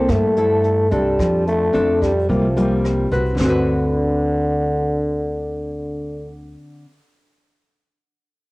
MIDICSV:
0, 0, Header, 1, 5, 480
1, 0, Start_track
1, 0, Tempo, 550711
1, 1046, Time_signature, 4, 2, 24, 8
1, 7420, End_track
2, 0, Start_track
2, 0, Title_t, "Nylon-string guitar"
2, 0, Program_c, 0, 24
2, 0, Note_on_c, 0, 58, 54
2, 0, Note_on_c, 0, 64, 62
2, 0, Note_on_c, 0, 69, 60
2, 85, Note_on_c, 0, 43, 51
2, 292, Note_off_c, 0, 58, 0
2, 293, Note_off_c, 0, 64, 0
2, 295, Note_off_c, 0, 69, 0
2, 327, Note_on_c, 0, 64, 50
2, 332, Note_on_c, 0, 69, 63
2, 768, Note_off_c, 0, 64, 0
2, 770, Note_off_c, 0, 69, 0
2, 794, Note_on_c, 0, 60, 55
2, 798, Note_on_c, 0, 62, 60
2, 803, Note_on_c, 0, 69, 65
2, 1021, Note_off_c, 0, 43, 0
2, 1038, Note_on_c, 0, 53, 51
2, 1482, Note_off_c, 0, 60, 0
2, 1484, Note_off_c, 0, 62, 0
2, 1484, Note_off_c, 0, 69, 0
2, 1508, Note_on_c, 0, 60, 59
2, 1512, Note_on_c, 0, 62, 56
2, 1518, Note_on_c, 0, 69, 59
2, 1839, Note_off_c, 0, 60, 0
2, 1841, Note_off_c, 0, 62, 0
2, 1844, Note_off_c, 0, 69, 0
2, 1978, Note_off_c, 0, 53, 0
2, 1994, Note_on_c, 0, 48, 52
2, 1999, Note_on_c, 0, 55, 51
2, 2000, Note_on_c, 0, 58, 56
2, 2003, Note_on_c, 0, 65, 58
2, 2142, Note_off_c, 0, 55, 0
2, 2144, Note_off_c, 0, 58, 0
2, 2145, Note_off_c, 0, 65, 0
2, 2238, Note_on_c, 0, 55, 58
2, 2241, Note_on_c, 0, 58, 54
2, 2243, Note_on_c, 0, 65, 62
2, 2684, Note_off_c, 0, 55, 0
2, 2684, Note_off_c, 0, 58, 0
2, 2685, Note_off_c, 0, 65, 0
2, 2716, Note_on_c, 0, 60, 59
2, 2722, Note_on_c, 0, 66, 49
2, 2723, Note_on_c, 0, 71, 54
2, 2915, Note_off_c, 0, 48, 0
2, 2918, Note_on_c, 0, 50, 56
2, 2957, Note_off_c, 0, 60, 0
2, 2967, Note_on_c, 0, 60, 65
2, 2997, Note_off_c, 0, 66, 0
2, 3008, Note_on_c, 0, 66, 63
2, 3038, Note_off_c, 0, 71, 0
2, 3049, Note_on_c, 0, 71, 68
2, 5969, Note_off_c, 0, 50, 0
2, 6018, Note_off_c, 0, 60, 0
2, 6058, Note_off_c, 0, 66, 0
2, 6099, Note_off_c, 0, 71, 0
2, 7420, End_track
3, 0, Start_track
3, 0, Title_t, "Trombone"
3, 0, Program_c, 1, 57
3, 0, Note_on_c, 1, 60, 97
3, 92, Note_on_c, 1, 57, 96
3, 105, Note_off_c, 1, 60, 0
3, 810, Note_on_c, 1, 55, 83
3, 823, Note_off_c, 1, 57, 0
3, 1283, Note_off_c, 1, 55, 0
3, 1288, Note_on_c, 1, 57, 86
3, 1763, Note_on_c, 1, 55, 79
3, 1776, Note_off_c, 1, 57, 0
3, 1998, Note_off_c, 1, 55, 0
3, 2004, Note_on_c, 1, 53, 69
3, 2689, Note_off_c, 1, 53, 0
3, 2964, Note_on_c, 1, 50, 84
3, 5546, Note_off_c, 1, 50, 0
3, 7420, End_track
4, 0, Start_track
4, 0, Title_t, "Upright bass"
4, 0, Program_c, 2, 32
4, 76, Note_on_c, 2, 43, 89
4, 766, Note_off_c, 2, 43, 0
4, 799, Note_on_c, 2, 36, 85
4, 1025, Note_off_c, 2, 36, 0
4, 1040, Note_on_c, 2, 41, 82
4, 1489, Note_off_c, 2, 41, 0
4, 1520, Note_on_c, 2, 41, 86
4, 1969, Note_off_c, 2, 41, 0
4, 2001, Note_on_c, 2, 36, 89
4, 2688, Note_off_c, 2, 36, 0
4, 2717, Note_on_c, 2, 36, 83
4, 2944, Note_off_c, 2, 36, 0
4, 2956, Note_on_c, 2, 38, 81
4, 5700, Note_off_c, 2, 38, 0
4, 7420, End_track
5, 0, Start_track
5, 0, Title_t, "Drums"
5, 75, Note_on_c, 9, 37, 55
5, 75, Note_on_c, 9, 42, 48
5, 79, Note_on_c, 9, 36, 54
5, 162, Note_off_c, 9, 37, 0
5, 162, Note_off_c, 9, 42, 0
5, 166, Note_off_c, 9, 36, 0
5, 319, Note_on_c, 9, 42, 37
5, 406, Note_off_c, 9, 42, 0
5, 555, Note_on_c, 9, 42, 37
5, 642, Note_off_c, 9, 42, 0
5, 801, Note_on_c, 9, 42, 38
5, 888, Note_off_c, 9, 42, 0
5, 1040, Note_on_c, 9, 36, 58
5, 1043, Note_on_c, 9, 37, 59
5, 1043, Note_on_c, 9, 42, 57
5, 1127, Note_off_c, 9, 36, 0
5, 1130, Note_off_c, 9, 37, 0
5, 1130, Note_off_c, 9, 42, 0
5, 1282, Note_on_c, 9, 42, 41
5, 1369, Note_off_c, 9, 42, 0
5, 1521, Note_on_c, 9, 42, 42
5, 1609, Note_off_c, 9, 42, 0
5, 1759, Note_on_c, 9, 36, 46
5, 1763, Note_on_c, 9, 37, 52
5, 1763, Note_on_c, 9, 42, 38
5, 1847, Note_off_c, 9, 36, 0
5, 1850, Note_off_c, 9, 37, 0
5, 1850, Note_off_c, 9, 42, 0
5, 2000, Note_on_c, 9, 36, 52
5, 2007, Note_on_c, 9, 42, 54
5, 2087, Note_off_c, 9, 36, 0
5, 2094, Note_off_c, 9, 42, 0
5, 2242, Note_on_c, 9, 42, 44
5, 2329, Note_off_c, 9, 42, 0
5, 2482, Note_on_c, 9, 37, 49
5, 2482, Note_on_c, 9, 42, 40
5, 2569, Note_off_c, 9, 37, 0
5, 2569, Note_off_c, 9, 42, 0
5, 2726, Note_on_c, 9, 42, 44
5, 2813, Note_off_c, 9, 42, 0
5, 2961, Note_on_c, 9, 38, 65
5, 2961, Note_on_c, 9, 43, 62
5, 3048, Note_off_c, 9, 38, 0
5, 3048, Note_off_c, 9, 43, 0
5, 7420, End_track
0, 0, End_of_file